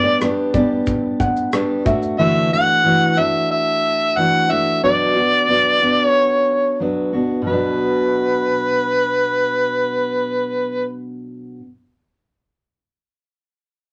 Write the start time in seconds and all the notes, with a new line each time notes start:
Already playing: G3 B3 D4 G4 D5
0.04 D5
0.21 G3 B3 D4 G4 B4, cross-stick, shaker
0.54 G3 B3 D4 G4 D5, kick, shaker
0.86 kick, shaker
1.20 F#5, kick, shaker
1.37 shaker
1.52 G3 B3 D4 G4, cross-stick, shaker
1.85 A3 D4 F#4 E5, kick, shaker
2.02 shaker
2.18 D3 E3 A3 D4 F#4 E5
2.52 A3 D4 F#4 F#5
2.84 E3 A3 D4 F#4
3.18 A3 D4 F#4 E5
3.51 E5
4.17 E3 A3 D4 F#4 F#5
4.49 A3 D4 F#4 E5
4.83 B2 F#3 B3 D4 F#4 D5
5.16 B3 D4 F#4
5.48 F#3 B3 D4 F#4
5.81 B3 D4 F#4
6.07 C#5
6.80 F#3 B3 D4 F#4
7.13 B3 D4 F#4
7.42 B2 F#3
7.47 B3 B4
7.52 D4 F#4